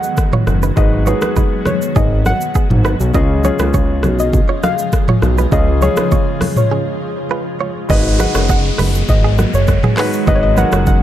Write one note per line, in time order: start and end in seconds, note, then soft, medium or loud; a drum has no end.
0.00 3.11 D#3 medium
0.00 3.11 F#3 medium
0.00 0.76 G#3 medium
0.00 7.86 G#3 medium
0.00 3.11 B3 medium
0.00 0.77 D#4 medium
0.00 0.77 F#4 medium
0.00 3.11 F#4 medium
0.00 3.16 A#4 medium
0.00 0.78 B4 medium
0.00 0.43 F#5 loud
0.00 shaker medium
0.17 kick medium
0.17 cross-stick medium
0.17 shaker medium
0.33 0.45 F4 medium
0.33 0.44 C#5 medium
0.33 mid tom loud
0.33 high conga medium
0.47 0.72 F#1 medium
0.47 cross-stick medium
0.47 shaker soft
0.63 0.74 D#4 medium
0.63 0.74 B4 medium
0.63 shaker medium
0.76 1.14 G#1 loud
0.76 1.02 G#3 medium
0.76 1.02 D#4 medium
0.76 1.03 F#4 medium
0.76 0.90 F#4 medium
0.76 1.03 B4 medium
0.76 0.89 D#5 medium
0.76 0.91 D#5 medium
0.76 kick loud
0.76 low conga medium
0.76 shaker medium
1.05 2.09 G#3 medium
1.05 2.09 D#4 medium
1.05 1.19 F4 medium
1.05 2.09 F#4 medium
1.05 2.10 G#4 medium
1.05 1.68 B4 medium
1.05 1.19 C#5 medium
1.05 high conga medium
1.05 shaker medium
1.22 1.34 D#4 medium
1.22 1.33 B4 medium
1.22 cross-stick loud
1.22 high conga medium
1.22 shaker medium
1.36 1.60 D#4 medium
1.36 1.59 B4 medium
1.36 kick medium
1.36 low conga medium
1.36 shaker medium
1.66 1.97 C#5 medium
1.66 cross-stick medium
1.66 high conga medium
1.66 low conga medium
1.66 shaker soft
1.82 shaker medium
1.96 2.33 G#1 loud
1.96 2.19 B3 medium
1.96 2.19 G#4 medium
1.96 2.27 D#5 loud
1.96 kick loud
1.96 low conga medium
1.96 shaker medium
2.26 2.81 F#5 loud
2.26 cross-stick medium
2.26 high conga medium
2.26 shaker medium
2.41 shaker medium
2.55 2.68 B3 medium
2.55 2.67 G#4 medium
2.55 kick medium
2.55 shaker medium
2.70 2.95 G#1 medium
2.70 mid tom loud
2.70 high conga medium
2.85 2.98 D#4 medium
2.85 2.97 B4 medium
2.85 cross-stick medium
2.85 shaker soft
3.00 3.12 B1 medium
3.00 shaker medium
3.13 3.52 C#2 loud
3.13 3.40 C#3 medium
3.13 7.86 C#3 medium
3.13 7.86 F3 medium
3.13 3.40 C#4 medium
3.13 7.86 F4 medium
3.13 3.40 F4 medium
3.13 7.86 G#4 medium
3.13 3.27 G#4 medium
3.13 3.41 G#4 medium
3.13 3.27 D#5 medium
3.13 3.46 D#5 medium
3.13 kick loud
3.13 low conga medium
3.13 shaker medium
3.43 4.46 C#3 medium
3.43 4.47 C#4 medium
3.43 4.47 F4 medium
3.43 3.57 F4 medium
3.43 4.47 G#4 medium
3.43 3.56 C#5 medium
3.43 4.22 C#5 medium
3.43 high conga medium
3.43 shaker medium
3.59 4.05 C#2 medium
3.59 3.71 D#4 medium
3.59 3.71 B4 medium
3.59 cross-stick loud
3.59 high conga medium
3.59 shaker medium
3.74 3.98 F4 medium
3.74 3.97 C#5 medium
3.74 kick medium
3.74 low conga medium
3.74 shaker medium
4.03 4.41 B1 medium
4.03 cross-stick medium
4.03 high conga medium
4.03 low conga medium
4.03 shaker medium
4.19 4.65 D#5 loud
4.19 shaker medium
4.33 kick loud
4.33 low conga medium
4.33 shaker medium
4.49 4.61 F4 medium
4.49 4.60 C#5 medium
4.63 4.76 F#4 medium
4.63 4.75 D#5 medium
4.63 5.19 F5 loud
4.63 cross-stick medium
4.63 high conga medium
4.63 shaker medium
4.79 shaker medium
4.93 kick medium
4.93 cross-stick medium
4.93 shaker medium
5.08 5.20 F4 medium
5.08 5.20 C#5 medium
5.08 mid tom loud
5.08 high conga medium
5.22 5.47 B1 medium
5.22 cross-stick medium
5.22 shaker soft
5.38 5.50 D#4 medium
5.38 5.49 B4 medium
5.38 shaker medium
5.51 5.89 C#2 loud
5.51 5.77 C#3 medium
5.51 5.78 C#4 medium
5.51 5.78 F4 medium
5.51 5.79 G#4 medium
5.51 5.65 G#4 medium
5.51 5.80 D#5 loud
5.51 5.64 D#5 medium
5.51 kick loud
5.51 low conga medium
5.51 shaker medium
5.81 6.84 C#3 medium
5.81 6.84 C#4 medium
5.81 6.85 F4 medium
5.81 5.95 F4 medium
5.81 6.85 G#4 medium
5.81 6.56 C#5 loud
5.81 5.94 C#5 medium
5.81 high conga medium
5.81 shaker medium
5.97 6.09 D#4 medium
5.97 6.09 B4 medium
5.97 cross-stick loud
5.97 high conga medium
5.97 shaker medium
6.12 6.35 F4 medium
6.12 6.35 C#5 medium
6.12 kick medium
6.12 low conga medium
6.12 shaker medium
6.41 cross-stick medium
6.41 open hi-hat medium
6.41 high conga medium
6.41 low conga medium
6.41 shaker medium
6.57 7.56 C#5 medium
6.57 mid tom medium
6.57 shaker medium
6.71 6.95 C#4 medium
6.71 6.94 G#4 medium
7.31 7.43 F4 medium
7.31 7.43 B4 medium
7.61 7.73 F4 medium
7.61 7.72 C#5 medium
7.89 8.27 G#1 loud
7.89 11.03 D#3 medium
7.89 11.03 F#3 medium
7.89 8.15 G#3 medium
7.89 11.03 G#3 medium
7.89 11.03 B3 medium
7.89 8.15 D#4 medium
7.89 11.03 F#4 medium
7.89 8.16 F#4 medium
7.89 8.03 F#4 medium
7.89 8.16 B4 medium
7.89 8.02 D#5 medium
7.89 8.21 D#5 loud
7.89 kick loud
7.89 downlifter medium
7.89 low conga medium
7.89 shaker medium
8.18 9.22 G#3 medium
8.18 9.22 D#4 medium
8.18 8.32 D#4 medium
8.18 9.22 F#4 medium
8.18 8.32 B4 medium
8.18 9.23 B4 medium
8.18 8.49 F#5 loud
8.18 high conga medium
8.18 shaker medium
8.34 8.71 F#1 medium
8.34 8.47 F4 medium
8.34 8.46 C#5 medium
8.34 cross-stick loud
8.34 shaker medium
8.49 8.62 F#4 medium
8.49 8.61 D#5 medium
8.49 9.11 F#5 loud
8.49 kick medium
8.49 low conga medium
8.49 shaker medium
8.78 9.03 F#1 loud
8.78 8.92 D#4 medium
8.78 8.91 B4 medium
8.78 cross-stick medium
8.78 open hi-hat medium
8.78 high conga medium
8.78 low conga medium
8.78 shaker medium
8.95 shaker medium
9.09 9.46 G#1 loud
9.09 9.56 D#5 loud
9.09 kick loud
9.09 low conga medium
9.09 shaker medium
9.24 9.36 B3 medium
9.24 9.35 G#4 medium
9.39 9.51 A#3 medium
9.39 9.51 F#4 medium
9.39 cross-stick medium
9.39 high conga medium
9.39 shaker medium
9.54 9.78 F#1 medium
9.54 9.95 C#5 medium
9.54 shaker medium
9.68 kick medium
9.68 cross-stick medium
9.68 shaker medium
9.83 9.95 B3 medium
9.83 9.95 G#4 medium
9.83 mid tom loud
9.83 high conga medium
9.96 10.23 G#3 medium
9.96 10.23 D#4 medium
9.96 10.10 D#4 medium
9.96 10.24 F#4 medium
9.96 10.10 B4 medium
9.96 10.24 B4 medium
9.96 cross-stick medium
9.96 clap loud
9.96 open hi-hat medium
9.96 shaker soft
10.13 shaker medium
10.26 10.64 G#1 loud
10.26 10.53 G#3 medium
10.26 10.53 D#4 medium
10.26 10.53 F#4 medium
10.26 10.40 F#4 medium
10.26 10.54 B4 medium
10.26 10.40 D#5 medium
10.26 10.35 D#5 loud
10.26 kick loud
10.26 low conga medium
10.26 shaker medium
10.35 10.42 C#5 medium
10.43 10.58 D#5 loud
10.56 11.03 G#3 medium
10.56 11.03 D#4 medium
10.56 10.70 D#4 medium
10.56 11.03 F#4 medium
10.56 11.03 A#4 medium
10.56 10.69 B4 medium
10.56 10.86 F#5 loud
10.56 high conga medium
10.56 shaker medium
10.72 11.03 F#1 medium
10.72 10.84 F4 medium
10.72 10.84 C#5 medium
10.72 cross-stick loud
10.72 shaker medium
10.87 11.03 F#5 loud
10.87 kick medium
10.87 low conga medium
10.87 shaker medium